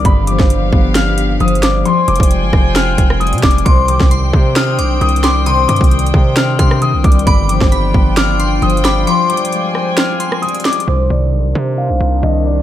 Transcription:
Already playing: harp C4 D4
0.05 808-style bass G1, harp G2, string section B3 G4 F5, grand piano B5, kick, closed hi-hat
0.27 harp F3, grand piano D6, closed hi-hat
0.39 808-style bass G1, kick, snare
0.50 harp G3, closed hi-hat
0.72 808-style bass G1, harp B3, kick
0.95 harp D4, grand piano F6, snare, closed hi-hat
1.18 closed hi-hat
1.40 808-style bass G1, harp F3, grand piano D#6, closed hi-hat
1.48 closed hi-hat
1.55 closed hi-hat
1.62 harp G3, grand piano D6, snare, closed hi-hat
1.85 harp F3, string section F4 G5 G#5, grand piano C6, closed hi-hat
2.08 808-style bass F1, harp G3, grand piano D6, closed hi-hat, open hi-hat
2.16 closed hi-hat
2.20 808-style bass F1, kick, closed hi-hat
2.31 harp G#3, closed hi-hat
2.43 808-style bass G1
2.53 808-style bass F1, harp C4, kick, cross-stick
2.75 harp F4, grand piano F6, snare, closed hi-hat
2.98 808-style bass F1, kick, closed hi-hat
3.10 cross-stick
3.20 harp G3, grand piano D#6, closed hi-hat
3.27 closed hi-hat
3.33 808-style bass C3, closed hi-hat
3.38 closed hi-hat
3.43 808-style bass F1, harp G#3, grand piano D6, kick, snare, closed hi-hat
3.51 closed hi-hat
3.58 closed hi-hat
3.65 808-style bass C2, harp C3, string section C4 C5 G5, grand piano C6, synth bell D6, kick, closed hi-hat
3.88 harp D#3, grand piano D6, closed hi-hat
4.00 808-style bass C2, kick, snare
4.11 harp G3, synth bell C6, closed hi-hat
4.33 808-style bass C3, harp C4, kick
4.56 harp D4, synth bell D#6, grand piano F6, snare, closed hi-hat
4.79 808-style bass B1, synth bell D6, closed hi-hat
5.01 808-style bass C2, harp D#3, grand piano D#6, closed hi-hat
5.09 closed hi-hat
5.16 closed hi-hat
5.24 harp G3, synth bell C6, grand piano D6, snare, closed hi-hat
5.46 harp C3, grand piano C6, synth bell D#6, closed hi-hat
5.68 808-style bass G2, harp D#3, grand piano D6, closed hi-hat, open hi-hat
5.76 closed hi-hat
5.81 808-style bass C2, kick, closed hi-hat
5.91 harp G3, closed hi-hat
5.99 closed hi-hat
6.06 closed hi-hat
6.14 808-style bass C3, harp C4, kick
6.36 harp D4, grand piano F6, snare, closed hi-hat
6.59 808-style bass C3, synth bell C6, kick, closed hi-hat
6.71 cross-stick
6.82 harp D#3, grand piano D#6, closed hi-hat
6.94 808-style bass B1
7.04 808-style bass C2, harp G3, grand piano D6, kick, closed hi-hat
7.12 closed hi-hat
7.19 closed hi-hat
7.26 808-style bass G1, harp G2, string section B3 F4 G5, grand piano B5, synth bell D6, kick, closed hi-hat
7.49 harp F3, grand piano D6, closed hi-hat
7.61 808-style bass G1, kick, snare
7.72 harp G3, synth bell B5, closed hi-hat
7.94 808-style bass G1, harp B3, kick
8.17 synth bell D6, grand piano F6, snare, closed hi-hat
8.40 synth bell C6, closed hi-hat
8.62 808-style bass G1, harp F3, grand piano D#6, closed hi-hat
8.70 closed hi-hat
8.77 closed hi-hat
8.84 harp G3, synth bell B5, grand piano D6, snare, closed hi-hat
9.07 harp F3, string section G#5, grand piano C6, synth bell D6, closed hi-hat
9.30 harp G3, grand piano D6, closed hi-hat, open hi-hat
9.37 closed hi-hat
9.45 closed hi-hat
9.52 harp G#3, closed hi-hat
9.75 harp C4, cross-stick
9.97 harp F4, grand piano F6, snare, closed hi-hat
10.20 synth bell C6, closed hi-hat
10.32 cross-stick
10.42 harp G3, grand piano D#6, closed hi-hat
10.49 closed hi-hat
10.55 closed hi-hat
10.60 closed hi-hat
10.65 harp G#3, grand piano D6, snare, closed hi-hat
10.73 closed hi-hat
10.80 closed hi-hat
10.87 808-style bass C2, harp C3, string section D#3 D4 C5, grand piano C5
11.10 808-style bass C2, harp D#3, grand piano D5
11.33 808-style bass B1, harp G3
11.45 808-style bass C2
11.55 808-style bass C3, harp C4
11.78 harp D4, grand piano F5
11.90 808-style bass B1
12.01 808-style bass C2
12.23 808-style bass C2, harp D#3, grand piano D#5
12.46 harp G3, grand piano D5

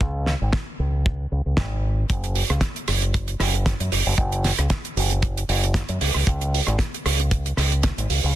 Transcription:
0.01 fingered electric bass C#2, kick
0.26 snare
0.41 fingered electric bass G#1
0.53 kick, snare
0.79 fingered electric bass C#2
1.06 kick
1.32 fingered electric bass C#2
1.46 fingered electric bass C#2
1.57 fingered electric bass G#1, kick, snare
2.10 fingered electric bass F#1, kick, closed hi-hat
2.24 closed hi-hat
2.35 open hi-hat
2.50 fingered electric bass C#2, cross-stick, closed hi-hat
2.61 kick, snare, closed hi-hat
2.76 closed hi-hat
2.88 fingered electric bass F#1, cross-stick, open hi-hat
3.02 closed hi-hat
3.14 kick, closed hi-hat
3.28 closed hi-hat
3.40 fingered electric bass F#1, cross-stick, snare, open hi-hat
3.54 closed hi-hat
3.66 kick, snare, closed hi-hat
3.80 fingered electric bass F#2, closed hi-hat
3.92 fingered electric bass F#1, open hi-hat
4.06 fingered electric bass F#1
4.18 fingered electric bass F#1, kick, closed hi-hat
4.32 closed hi-hat
4.44 snare, open hi-hat
4.58 fingered electric bass C#2, cross-stick, closed hi-hat
4.70 kick, snare, closed hi-hat
4.85 closed hi-hat
4.97 fingered electric bass F#1, open hi-hat
5.11 closed hi-hat
5.22 kick, closed hi-hat
5.37 closed hi-hat
5.49 fingered electric bass F#1, open hi-hat
5.63 closed hi-hat
5.74 kick, snare, closed hi-hat
5.89 fingered electric bass F#2, closed hi-hat
6.01 fingered electric bass C#2, open hi-hat
6.14 fingered electric bass C#2, cross-stick
6.27 fingered electric bass C#2, kick, closed hi-hat
6.41 closed hi-hat
6.54 open hi-hat
6.67 fingered electric bass G#1, cross-stick, closed hi-hat
6.79 kick, snare, closed hi-hat
6.94 closed hi-hat
7.06 fingered electric bass C#2, cross-stick, open hi-hat
7.20 closed hi-hat
7.31 kick, closed hi-hat
7.46 closed hi-hat
7.57 fingered electric bass C#2, cross-stick, snare, open hi-hat
7.72 closed hi-hat
7.83 kick, snare, closed hi-hat
7.98 fingered electric bass G#1, closed hi-hat
8.10 fingered electric bass C#2, open hi-hat
8.24 fingered electric bass C#2

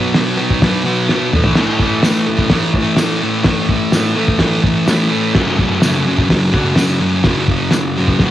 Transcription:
Already playing: distorted electric guitar B2 F#3 B3
0.14 distorted electric guitar B2 F#3 B3, snare, open hi-hat
0.37 distorted electric guitar B2 F#3 B3
0.50 kick
0.61 distorted electric guitar B2 F#3 B3, kick, snare, open hi-hat
0.84 distorted electric guitar F#3 B3
1.09 distorted electric guitar B2 F#3 B3, snare
1.33 distorted electric guitar A2 E3 A3, mid tom
1.44 floor tom
1.56 distorted electric guitar A2 E3 A3, snare, crash
1.80 distorted electric guitar E3 A3, kick
2.03 distorted electric guitar A2 E3 A3, snare, open hi-hat, tambourine
2.26 distorted electric guitar A2 E3 A3
2.39 kick
2.50 distorted electric guitar A2 E3, kick, snare, open hi-hat
2.54 distorted electric guitar A3
2.74 distorted electric guitar A3, kick
2.78 distorted electric guitar E3
2.97 distorted electric guitar A2 E3, snare, open hi-hat, tambourine
3.01 distorted electric guitar A3
3.22 distorted electric guitar E3 A3
3.44 distorted electric guitar A2 E3 A3, kick, snare, open hi-hat
3.69 distorted electric guitar E3 A3, kick
3.92 distorted electric guitar A2 E3 A3, snare, open hi-hat, tambourine
4.16 distorted electric guitar A2 E3 A3
4.28 kick
4.39 distorted electric guitar A2 E3 A3, kick, snare, open hi-hat
4.63 distorted electric guitar E3 A3, kick
4.86 distorted electric guitar A2 E3 A3, snare, open hi-hat, tambourine
5.11 distorted electric guitar E3 A3
5.35 distorted electric guitar F#2 C#3 F#3, kick, snare, crash
5.59 distorted electric guitar C#3 F#3, kick
5.82 distorted electric guitar F#2 C#3 F#3, snare, open hi-hat, tambourine
6.05 distorted electric guitar F#2 C#3 F#3
6.18 kick
6.28 distorted electric guitar F#2 C#3 F#3, kick, snare, open hi-hat
6.52 distorted electric guitar C#3 F#3, kick
6.76 distorted electric guitar F#2 C#3 F#3, snare, open hi-hat, tambourine
7.01 distorted electric guitar C#3 F#3
7.24 distorted electric guitar F#2 C#3 F#3, kick, snare, open hi-hat
7.48 distorted electric guitar C#3 F#3, kick
7.71 distorted electric guitar F#2 C#3, snare, open hi-hat, tambourine
7.75 distorted electric guitar F#3
7.97 distorted electric guitar F#2 C#3 F#3
8.08 kick
8.19 distorted electric guitar F#2, kick, snare
8.24 distorted electric guitar C#3 F#3

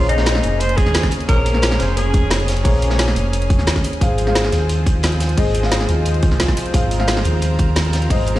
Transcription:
Already playing: sub bass A#1, analog synth pad C#3 G#4, felt piano A#3 G#4 C5 C#5
0.09 tenor saxophone D#4, closed hi-hat
0.16 felt piano A#3 G#4 C5, snare
0.20 felt piano C#5
0.26 snare, closed hi-hat
0.35 snare
0.43 sub bass F1, closed hi-hat
0.60 tenor saxophone C5, closed hi-hat
0.69 closed hi-hat
0.77 tenor saxophone G#4, kick, closed hi-hat
0.86 sub bass D#2, snare, closed hi-hat
0.94 snare, closed hi-hat
1.03 kick, snare, closed hi-hat
1.11 closed hi-hat, open hi-hat
1.20 closed hi-hat
1.28 sub bass A#1, felt piano A#3 G#4 C5 C#5, analog synth pad C#4, tenor saxophone A#4, kick, closed hi-hat
1.46 closed hi-hat
1.53 felt piano A#3 G#4 C5 C#5, snare
1.62 snare, closed hi-hat
1.71 snare
1.79 sub bass F1, tenor saxophone C5, snare, closed hi-hat
1.97 tenor saxophone G#4, closed hi-hat
2.14 kick, closed hi-hat
2.31 snare, closed hi-hat
2.40 closed hi-hat
2.48 snare, closed hi-hat, open hi-hat
2.57 closed hi-hat
2.64 sub bass A#1, felt piano A#3 G#4 C5 C#5, kick, closed hi-hat, open hi-hat
2.82 closed hi-hat
2.88 felt piano A#3 G#4 C5, snare
2.93 felt piano C#5
2.99 snare, closed hi-hat
3.07 snare
3.16 sub bass F1, closed hi-hat
3.33 closed hi-hat
3.42 closed hi-hat
3.50 kick, closed hi-hat
3.59 sub bass D#2, snare, closed hi-hat
3.67 snare, closed hi-hat
3.76 kick, snare, closed hi-hat
3.84 analog synth pad F3 C4, closed hi-hat, open hi-hat
3.93 closed hi-hat
4.00 sub bass G#1, felt piano G#3 G#4 C5 F5, kick, closed hi-hat
4.18 closed hi-hat
4.26 felt piano G#3 G#4 C5 F5, snare
4.35 snare, closed hi-hat
4.44 snare
4.52 sub bass D#2, snare, closed hi-hat
4.69 closed hi-hat
4.87 kick, closed hi-hat
5.03 snare, closed hi-hat
5.12 closed hi-hat
5.20 snare, closed hi-hat, open hi-hat
5.29 closed hi-hat
5.37 sub bass G#1, felt piano G#3 G#4 C5 D#5, kick, closed hi-hat, open hi-hat
5.55 closed hi-hat
5.61 felt piano G#3 G#4 C5, snare
5.65 felt piano F5
5.72 snare, closed hi-hat
5.80 snare
5.89 sub bass D#2, closed hi-hat
6.05 closed hi-hat
6.14 closed hi-hat
6.23 kick, closed hi-hat
6.31 sub bass C2, snare, closed hi-hat
6.40 snare, closed hi-hat
6.48 kick, snare, closed hi-hat
6.57 analog synth pad A#4, closed hi-hat, open hi-hat
6.66 closed hi-hat
6.73 sub bass G#1, felt piano G#3 G#4 C5 F5, kick, closed hi-hat
6.91 closed hi-hat
6.98 felt piano G#3 G#4 C5 F5, snare
7.08 snare, closed hi-hat
7.17 snare
7.25 sub bass D#2, closed hi-hat
7.42 closed hi-hat
7.59 kick, closed hi-hat
7.76 snare, closed hi-hat
7.85 closed hi-hat
7.93 snare, closed hi-hat, open hi-hat
8.02 closed hi-hat
8.09 sub bass G#1, felt piano G#3 G#4 C5 D#5, kick, closed hi-hat, open hi-hat
8.27 closed hi-hat
8.33 felt piano G#3 G#4 C5, snare

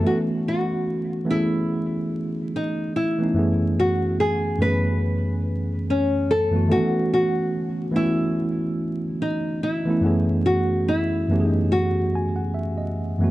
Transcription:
0.03 tine electric piano E3 A3 B3 C#4, nylon-string guitar F#4
0.08 tine electric piano F#4
0.48 nylon-string guitar F#4
1.25 tine electric piano E3 A3 B3 C#4
1.30 nylon-string guitar E4, tine electric piano G#4
2.56 nylon-string guitar D#4
2.96 nylon-string guitar E4
3.18 tine electric piano E3 A3 B3 C#4
3.23 tine electric piano D#4
3.34 tine electric piano F#2 E3 A3 B3
3.38 tine electric piano C#4 G#4
3.80 nylon-string guitar F#4
4.20 nylon-string guitar G#4
4.58 tine electric piano F#2 E3 A3 B3, nylon-string guitar B4
4.63 tine electric piano C#4 G#4
5.90 nylon-string guitar C#4
6.31 nylon-string guitar A4
6.51 tine electric piano F#2 E3 A3 B3 C#4
6.56 tine electric piano F#4
6.67 tine electric piano D#3 A3 B3
6.71 tine electric piano E3 C#4 F#4, nylon-string guitar F#4
7.14 nylon-string guitar F#4
7.91 tine electric piano E3 A3 B3
7.95 tine electric piano C#4 F#4, nylon-string guitar E4
9.22 nylon-string guitar D#4
9.63 nylon-string guitar E4
9.85 tine electric piano E3 A3 B3 C#4
9.90 tine electric piano E4
10.01 tine electric piano F#2 E3 A3 B3
10.05 tine electric piano C#4 G#4
10.46 nylon-string guitar F#4
10.88 nylon-string guitar E4
11.29 tine electric piano F#2 E3 A3 B3
11.33 tine electric piano C#4 G4
11.40 tine electric piano G#4
11.46 nylon-string guitar D#4
11.72 nylon-string guitar F#4
12.15 tine electric piano G#5
12.36 tine electric piano F#5
12.54 tine electric piano E5
12.78 tine electric piano D#5
13.19 tine electric piano F#2 E3 A3 B3
13.23 tine electric piano C#4 F#4

